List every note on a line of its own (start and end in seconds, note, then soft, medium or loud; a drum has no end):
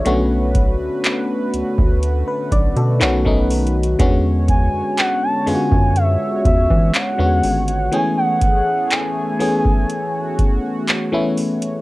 0.00 0.28 C#5 medium
0.05 0.76 B1 loud
0.05 1.17 D3 loud
0.05 2.98 D3 medium
0.05 1.17 A3 medium
0.05 3.95 A3 medium
0.05 1.17 B3 medium
0.05 1.18 C#4 medium
0.05 3.95 F#4 medium
0.05 1.18 F#4 loud
0.05 2.98 B4 medium
0.05 closed hi-hat medium
0.55 kick loud
0.55 closed hi-hat medium
0.80 0.89 D2 soft
1.04 clap loud
1.04 closed hi-hat medium
1.54 1.63 D2 soft
1.54 closed hi-hat medium
1.78 2.23 D2 loud
1.78 kick loud
2.03 closed hi-hat medium
2.28 2.51 B4 medium
2.52 2.74 B1 medium
2.52 2.75 D5 medium
2.52 kick loud
2.52 closed hi-hat medium
2.76 3.03 B2 loud
2.76 3.23 A4 medium
2.76 closed hi-hat soft
3.00 3.95 B1 loud
3.00 3.20 D#3 loud
3.00 3.98 D#3 medium
3.00 3.20 A3 medium
3.00 3.21 B3 medium
3.00 3.21 C#4 medium
3.00 3.21 F#4 loud
3.00 3.98 B4 medium
3.00 clap loud
3.00 closed hi-hat medium
3.25 3.81 D#3 medium
3.25 3.81 A3 medium
3.25 3.82 B3 medium
3.25 3.82 C#4 medium
3.25 3.82 D#4 loud
3.25 kick medium
3.51 closed hi-hat soft
3.51 open hi-hat medium
3.67 closed hi-hat medium
3.83 closed hi-hat medium
3.99 4.69 E2 loud
3.99 5.11 D3 loud
3.99 7.89 D3 medium
3.99 7.89 G#3 medium
3.99 5.11 G#3 medium
3.99 5.11 B3 medium
3.99 5.11 C#4 medium
3.99 7.89 F#4 medium
3.99 5.12 F#4 loud
3.99 11.81 C#5 medium
3.99 kick loud
3.99 closed hi-hat medium
4.48 4.99 G#5 loud
4.48 kick loud
4.48 closed hi-hat medium
4.73 4.83 F#2 soft
4.98 5.24 F#5 loud
4.98 clap loud
4.98 closed hi-hat medium
5.23 5.48 A5 loud
5.46 5.57 F#2 soft
5.46 6.77 D3 medium
5.46 6.77 G#3 medium
5.46 6.77 B3 medium
5.46 6.77 C#4 medium
5.46 5.54 F4 medium
5.46 5.98 G#5 loud
5.46 open hi-hat medium
5.55 6.81 F#4 medium
5.72 6.17 F#2 loud
5.72 kick medium
5.96 6.45 E5 loud
5.96 closed hi-hat medium
6.45 6.67 E2 loud
6.45 6.96 E5 loud
6.45 kick medium
6.45 closed hi-hat medium
6.70 6.92 E3 loud
6.70 kick medium
6.94 7.95 F#5 loud
6.94 clap loud
6.94 closed hi-hat medium
7.18 7.41 E2 loud
7.18 7.74 D3 medium
7.18 7.75 G#3 medium
7.18 7.75 B3 medium
7.18 7.75 C#4 medium
7.18 7.75 F#4 medium
7.44 7.89 G#1 medium
7.44 closed hi-hat soft
7.44 open hi-hat medium
7.68 closed hi-hat medium
7.92 9.04 E3 medium
7.92 11.81 E3 medium
7.92 9.04 A3 medium
7.92 11.81 A3 medium
7.92 9.04 B3 medium
7.92 9.04 C#4 medium
7.92 9.88 G#4 medium
7.92 9.05 G#4 medium
7.92 8.17 G#5 loud
7.92 closed hi-hat medium
8.17 8.40 F#5 loud
8.42 8.93 F#5 loud
8.42 kick medium
8.42 closed hi-hat medium
8.91 11.37 G#5 loud
8.91 clap loud
8.91 closed hi-hat medium
9.39 10.70 E3 medium
9.39 10.70 A3 medium
9.39 10.70 B3 medium
9.39 10.71 C#4 medium
9.39 10.71 G#4 medium
9.39 open hi-hat medium
9.65 kick loud
9.90 11.81 F#4 medium
9.90 closed hi-hat medium
10.39 kick loud
10.39 closed hi-hat medium
10.88 clap loud
10.88 closed hi-hat medium
11.12 11.68 E3 medium
11.12 11.68 A3 medium
11.12 11.68 B3 medium
11.12 11.69 C#4 medium
11.12 11.69 E4 loud
11.37 closed hi-hat soft
11.37 open hi-hat medium
11.62 closed hi-hat medium